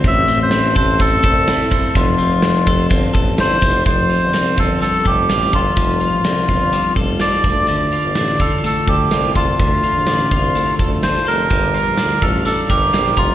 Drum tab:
HH |xxxxxxxx|xxxxxxxo|xxxxxxxx|xxxxxxxx|
SD |--o---o-|--o---o-|--o---o-|--o---o-|
BD |o--ooo-o|o--ooo-o|o--o-o-o|o--o-o-o|

HH |xxxxxxxx|xxxxxxxo|xxxxxxxx|
SD |--o---o-|--o---o-|--o---o-|
BD |---o-o-o|o--o-o--|o--o-o-o|